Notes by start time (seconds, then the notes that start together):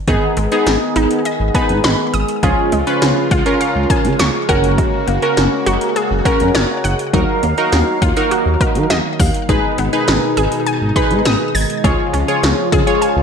0.08 G#1 D#3 G#3 B3 D#4 G#4, kick, closed hi-hat
0.37 G#1 G#3, closed hi-hat
0.52 B3 D#4 G#4, closed hi-hat
0.66 G#1, snare, closed hi-hat
0.96 G#1 D#4, closed hi-hat
1.11 closed hi-hat
1.25 D#5, closed hi-hat
1.40 G#1
1.55 B3 D#4 B4 G#5, kick, closed hi-hat
1.69 G#2, closed hi-hat
1.84 G#1 B5, snare, closed hi-hat
2.14 G#1 D#6, closed hi-hat
2.28 closed hi-hat
2.43 C#2 C#3 F3 C#4 F4 G#4, kick, closed hi-hat
2.72 C#2 G#3, closed hi-hat
2.87 C#4 F4 B4, closed hi-hat
3.02 C#2, snare, closed hi-hat
3.31 C#2 F4, kick, closed hi-hat
3.46 C#4 F4 A#4, closed hi-hat
3.61 F5, closed hi-hat
3.75 C#2
3.90 G#5, kick, closed hi-hat
4.05 C#3, closed hi-hat
4.19 C#2 C#6, snare, closed hi-hat
4.49 F#1 C#3 A#3 C#4 F#4 A#4 F#5, kick, closed hi-hat
4.64 closed hi-hat
4.78 G#3, kick, closed hi-hat
5.07 F#1 A#3, closed hi-hat
5.22 C#4 F#4 A#4, closed hi-hat
5.37 F#1, snare, closed hi-hat
5.66 F#1 F#4, closed hi-hat
5.81 closed hi-hat
5.96 G#4, closed hi-hat
6.11 F#1
6.25 C#4 F#4 A#4, kick, closed hi-hat
6.40 F#2, closed hi-hat
6.55 F#1 C#5, snare, closed hi-hat
6.84 F#1 F#5, closed hi-hat
6.99 closed hi-hat
7.13 D#2 D#3 F#3 A#3 D#4 F#4 A#4 F5, kick, closed hi-hat
7.43 D#2 A#3, closed hi-hat
7.58 D#4 F#4 A#4, closed hi-hat
7.72 D#2, snare, closed hi-hat
8.02 D#2 F4, kick, closed hi-hat
8.17 D#4 F#4 A#4, closed hi-hat
8.31 F#4, closed hi-hat
8.46 D#2
8.61 A#4, kick, closed hi-hat
8.75 D#3, closed hi-hat
8.90 D#2 D#5, snare, closed hi-hat
9.19 D#2 F5, kick, open hi-hat
9.34 closed hi-hat
9.49 G#1 B2 G#3 D#4 G#4 B4, kick, closed hi-hat
9.78 G#1 B3, closed hi-hat
9.93 D#4 G#4 B4, closed hi-hat
10.08 G#1, snare, closed hi-hat
10.37 G#1 G#4, closed hi-hat
10.52 closed hi-hat
10.66 G#5, closed hi-hat
10.81 G#1
10.96 D#4 G#4 B4 B5, kick, closed hi-hat
11.11 G#2, closed hi-hat
11.25 G#1 D#6, snare, closed hi-hat
11.55 G#1 G#6, open hi-hat
11.70 closed hi-hat
11.84 C#2 C#3 F3 G#3 F4 G#4 C#5, kick, closed hi-hat
12.13 C#2 C#4, closed hi-hat
12.28 F4 G#4 C#5, closed hi-hat
12.43 C#2, snare, closed hi-hat
12.72 C#2 G#4, kick, closed hi-hat
12.87 F4 G#4 C#5, closed hi-hat
13.02 G#5, closed hi-hat
13.16 C#2